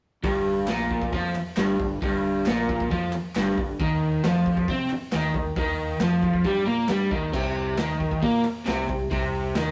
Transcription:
0.23 G1 G2, kick, open hi-hat
0.66 A#1 A#2, snare, clap, open hi-hat
0.91 kick
1.02 kick
1.13 F2 F3, kick, open hi-hat
1.34 muted fingered electric bass stroke, muted overdriven electric guitar stroke, clap
1.56 G1 G2, snare, clap, open hi-hat
1.79 G1 G2, kick
2.02 G1 G2, kick, open hi-hat
2.46 A#1 A#2, snare, clap, open hi-hat
2.69 kick
2.80 kick
2.91 F2 F3, kick, open hi-hat
3.12 muted fingered electric bass stroke, muted overdriven electric guitar stroke, clap
3.35 G1 G2, snare, clap, open hi-hat
3.57 G1 G2, kick
3.80 D#2 D#3, kick, open hi-hat
4.24 F2 F3, snare, clap, open hi-hat
4.46 kick
4.57 kick
4.68 C3 C4, kick, open hi-hat
4.90 muted fingered electric bass stroke, muted overdriven electric guitar stroke, clap
5.12 D#2 D#3, snare, clap, open hi-hat
5.34 D#2 D#3, kick
5.56 D#2 D#3, kick, open hi-hat
6.00 F2 F3, snare, clap, open hi-hat
6.23 kick
6.33 kick
6.44 G2 G3, kick, open hi-hat
6.66 A#2 A#3
6.88 G2 G3, snare, clap, open hi-hat
7.11 D#2 D#3, kick
7.33 C2 C3, kick, crash
7.78 D#2 D#3, snare, clap, open hi-hat
8.00 kick
8.11 kick
8.23 A#2 A#3, kick, open hi-hat
8.44 muted overdriven electric guitar stroke, muted fingered electric bass stroke, clap
8.66 C2 C3, snare, clap, open hi-hat
8.88 C2 C3, kick
9.11 C2 C3, kick, open hi-hat
9.55 D#2 D#3, snare, clap, open hi-hat

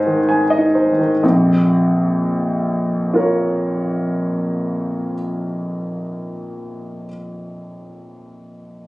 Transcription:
Already playing: G#2 D#4 C5 D#5 G#5 C6
0.07 D#3
0.29 G#5
0.50 D#5
0.58 D#4
0.75 C5
0.91 D#3
0.99 D#3
1.23 A#1 F2
3.14 F4 A#4
3.18 C#5

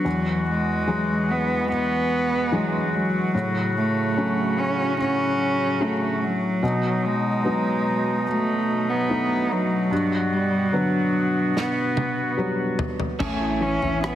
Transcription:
Already playing: F#3 F#4
0.04 E2 E3 G#3
0.50 G#3
0.87 E3 F#3 G#3
1.31 B3
1.72 B3
2.52 E3 F#3 G#3
2.95 F#3
3.32 A2 C#3 F#3 F#4
3.77 A3
4.17 F#3 A3 C#4
4.60 C#4
5.00 C#4
5.80 F#3 A3 C#4
6.24 F#3
6.62 B2 D#4
7.05 G#3
7.45 F#3 B3 D#4
8.28 A3
8.89 B3
9.10 A3 B3 D#4
9.52 F#3
9.90 G2 B3 F#4
10.33 G3
10.73 D3 F#3 B3
11.57 B3, snare
11.97 high tom
12.37 F#3 G3 B3
12.79 floor tom
13.00 floor tom
13.19 A1 A3 C#4 E4 G#4 C#5 E5 G#5, kick, floor tom, crash
13.40 E4
13.61 E3 C#4
13.82 A1 E4, floor tom
14.03 B3 C#4 E4 G#4, cross-stick

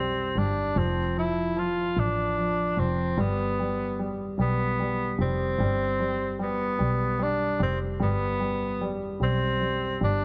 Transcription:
Already playing: B1 G3 C4
0.36 G1 G3 D4
0.76 F1 F3 C4
1.17 F3 E4
1.56 F3 F4
1.97 A1 F3 D4
2.37 F3
2.77 F1 F3 C4
3.18 G1 G3 B3
3.59 G3
3.99 G3
4.38 B1 G3 B3
4.79 G3
5.19 F1 G3 C4
5.59 G1 G3
6.00 G3
6.39 G3 B3
6.79 B1 G3
7.19 G3
7.23 D4
7.59 F1 G3 C4
8.00 G1 G3 B3
8.40 G3
8.81 G3
9.20 B1 G3 C4
9.61 G3
10.01 G1 G3 D4

